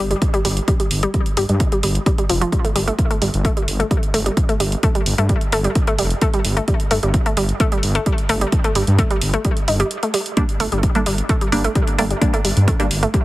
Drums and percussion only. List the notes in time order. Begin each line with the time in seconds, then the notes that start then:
0.11 closed hi-hat
0.22 kick, closed hi-hat
0.34 closed hi-hat
0.45 open hi-hat
0.57 closed hi-hat
0.68 kick, closed hi-hat
0.80 closed hi-hat
0.91 open hi-hat
1.03 closed hi-hat
1.14 kick, closed hi-hat
1.26 closed hi-hat
1.37 open hi-hat
1.49 closed hi-hat
1.60 kick, closed hi-hat
1.72 closed hi-hat
1.83 open hi-hat
1.95 closed hi-hat
2.06 kick, closed hi-hat
2.18 closed hi-hat
2.29 open hi-hat
2.42 closed hi-hat
2.52 kick, closed hi-hat
2.65 closed hi-hat
2.76 open hi-hat
2.88 closed hi-hat
2.99 kick, closed hi-hat
3.11 closed hi-hat
3.22 open hi-hat
3.34 closed hi-hat
3.45 kick, closed hi-hat
3.57 closed hi-hat
3.68 open hi-hat
3.80 closed hi-hat
3.91 kick, closed hi-hat
4.03 closed hi-hat
4.14 open hi-hat
4.26 closed hi-hat
4.37 kick, closed hi-hat
4.49 closed hi-hat
4.60 open hi-hat
4.72 closed hi-hat
4.83 kick, closed hi-hat
4.95 closed hi-hat
5.06 open hi-hat
5.18 closed hi-hat
5.29 kick, closed hi-hat
5.41 closed hi-hat
5.52 open hi-hat
5.64 closed hi-hat
5.75 kick, closed hi-hat
5.87 closed hi-hat
5.99 open hi-hat
6.10 closed hi-hat
6.21 kick, closed hi-hat
6.34 closed hi-hat
6.45 open hi-hat
6.57 closed hi-hat
6.68 kick, closed hi-hat
6.80 closed hi-hat
6.91 open hi-hat
7.03 closed hi-hat
7.14 kick, closed hi-hat
7.26 closed hi-hat
7.37 open hi-hat
7.49 closed hi-hat
7.60 kick, closed hi-hat
7.72 closed hi-hat
7.83 open hi-hat
7.95 closed hi-hat
8.06 kick, closed hi-hat
8.18 closed hi-hat
8.29 open hi-hat
8.41 closed hi-hat
8.52 kick, closed hi-hat
8.64 closed hi-hat
8.75 open hi-hat
8.87 closed hi-hat
8.99 kick, closed hi-hat
9.11 closed hi-hat
9.21 open hi-hat
9.34 closed hi-hat
9.45 kick, closed hi-hat
9.57 closed hi-hat
9.68 open hi-hat
9.80 closed hi-hat
9.91 closed hi-hat
10.03 closed hi-hat
10.14 open hi-hat
10.26 closed hi-hat
10.37 kick, closed hi-hat
10.49 closed hi-hat
10.60 open hi-hat
10.72 closed hi-hat
10.83 kick, closed hi-hat
10.95 closed hi-hat
11.06 open hi-hat
11.18 closed hi-hat
11.29 kick, closed hi-hat
11.41 closed hi-hat
11.52 open hi-hat
11.64 closed hi-hat
11.75 kick, closed hi-hat
11.87 closed hi-hat
11.99 open hi-hat
12.11 closed hi-hat
12.22 kick, closed hi-hat
12.34 closed hi-hat
12.45 open hi-hat
12.57 closed hi-hat
12.68 kick, closed hi-hat
12.80 closed hi-hat
12.91 open hi-hat
13.03 closed hi-hat
13.14 kick, closed hi-hat